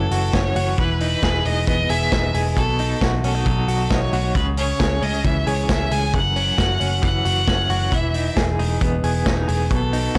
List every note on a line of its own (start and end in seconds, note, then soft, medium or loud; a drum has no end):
0.00 0.78 F#2 medium
0.00 0.77 E3 medium
0.00 0.33 C#4 medium
0.00 0.10 F#4 medium
0.00 0.36 A4 medium
0.11 0.29 F#1 medium
0.11 0.55 F#4 medium
0.11 open hi-hat medium
0.33 0.52 F#1 medium
0.33 0.83 C#4 medium
0.33 0.78 C#5 medium
0.33 kick loud
0.33 snare loud
0.33 closed hi-hat medium
0.56 0.74 F#1 medium
0.56 0.83 F#4 medium
0.56 open hi-hat medium
0.78 1.15 E1 medium
0.78 2.57 E3 medium
0.78 0.99 B4 medium
0.78 kick loud
1.00 1.45 D#4 soft
1.00 1.47 B4 medium
1.00 open hi-hat medium
1.23 1.41 E1 medium
1.23 1.89 G#4 medium
1.23 kick loud
1.23 snare loud
1.23 closed hi-hat medium
1.45 1.64 E1 medium
1.45 2.11 D#4 medium
1.45 1.67 D#5 medium
1.45 open hi-hat medium
1.67 1.86 E1 medium
1.67 3.27 B3 medium
1.67 1.91 D#5 medium
1.67 kick loud
1.67 closed hi-hat medium
1.89 2.08 E1 medium
1.89 2.33 G#4 medium
1.89 2.34 E5 medium
1.89 open hi-hat medium
2.12 2.30 E1 medium
2.12 2.61 D#4 medium
2.12 kick loud
2.12 snare loud
2.12 closed hi-hat medium
2.34 2.53 E1 medium
2.34 2.61 G#4 medium
2.34 open hi-hat medium
2.56 2.93 B1 loud
2.56 4.35 B2 medium
2.56 2.98 A4 loud
2.56 kick medium
2.56 closed hi-hat medium
2.79 3.24 D#4 medium
2.79 open hi-hat medium
3.01 3.20 B1 medium
3.01 3.67 F#4 medium
3.01 kick loud
3.01 snare loud
3.01 closed hi-hat medium
3.24 3.42 B1 medium
3.24 3.35 C#4 medium
3.24 3.93 A4 medium
3.24 open hi-hat medium
3.35 3.89 D#4 medium
3.46 3.64 B1 medium
3.46 4.40 F#3 medium
3.46 kick loud
3.46 closed hi-hat medium
3.68 3.87 B1 medium
3.68 4.12 F#4 medium
3.68 open hi-hat medium
3.90 4.09 B1 medium
3.90 4.40 D#4 medium
3.90 4.35 C#5 medium
3.90 kick loud
3.90 snare loud
3.90 closed hi-hat medium
4.13 4.31 B1 medium
4.13 4.40 F#4 medium
4.13 open hi-hat medium
4.35 4.72 C#2 loud
4.35 6.14 C#3 medium
4.35 4.45 B4 medium
4.35 kick loud
4.35 closed hi-hat medium
4.57 5.01 C#4 medium
4.57 5.04 C#5 medium
4.57 open hi-hat medium
4.79 4.98 C#2 medium
4.79 5.46 G#4 medium
4.79 kick loud
4.79 snare loud
4.79 closed hi-hat medium
5.02 5.21 C#2 medium
5.02 5.69 C#4 medium
5.02 5.27 D#5 medium
5.02 open hi-hat medium
5.24 5.43 C#2 medium
5.24 6.61 E3 medium
5.24 5.49 E5 medium
5.24 kick loud
5.24 closed hi-hat medium
5.47 5.65 C#2 medium
5.47 5.91 G#4 medium
5.47 5.71 C#5 medium
5.47 open hi-hat medium
5.69 5.87 C#2 medium
5.69 6.18 C#4 medium
5.69 5.93 E5 medium
5.69 kick loud
5.69 snare loud
5.69 closed hi-hat medium
5.91 6.15 C#2 medium
5.91 6.18 G#4 medium
5.91 6.14 G#5 medium
5.91 open hi-hat medium
6.14 6.50 F#1 loud
6.14 7.92 F#2 medium
6.14 6.99 F#5 loud
6.14 kick medium
6.14 closed hi-hat medium
6.36 6.79 C#4 medium
6.36 open hi-hat medium
6.58 6.77 F#1 medium
6.58 7.24 F#4 medium
6.58 kick loud
6.58 snare loud
6.58 closed hi-hat medium
6.80 6.99 F#1 medium
6.80 7.47 C#4 medium
6.80 open hi-hat medium
7.02 7.21 F#1 medium
7.02 7.91 E3 medium
7.02 7.94 F#5 medium
7.02 kick loud
7.02 closed hi-hat medium
7.25 7.44 F#1 medium
7.25 7.69 F#4 medium
7.25 open hi-hat medium
7.47 7.66 F#1 medium
7.47 7.97 C#4 medium
7.47 kick loud
7.47 snare loud
7.47 closed hi-hat medium
7.69 7.88 F#1 medium
7.69 7.97 F#4 medium
7.69 open hi-hat medium
7.92 8.29 E1 medium
7.92 9.71 E3 medium
7.92 8.37 E5 medium
7.92 kick loud
7.92 closed hi-hat medium
8.14 8.59 D#4 medium
8.14 open hi-hat medium
8.37 8.55 E1 medium
8.37 9.03 G#4 medium
8.37 kick loud
8.37 snare loud
8.37 closed hi-hat medium
8.58 8.77 E1 medium
8.58 9.25 D#4 medium
8.58 open hi-hat medium
8.81 9.00 E1 medium
8.81 10.18 B3 medium
8.81 kick loud
8.81 closed hi-hat medium
9.04 9.22 E1 medium
9.04 9.47 G#4 medium
9.04 open hi-hat medium
9.26 9.44 E1 medium
9.26 9.37 C#4 medium
9.26 kick loud
9.26 snare loud
9.26 closed hi-hat medium
9.37 9.75 D#4 soft
9.48 9.67 E1 medium
9.48 9.75 G#4 medium
9.48 open hi-hat medium
9.71 10.07 B1 medium
9.71 10.18 B2 medium
9.71 10.18 A4 medium
9.71 kick loud
9.71 closed hi-hat medium
9.93 10.18 D#4 medium
9.93 open hi-hat medium
10.15 10.18 B1 loud
10.15 10.18 F#4 medium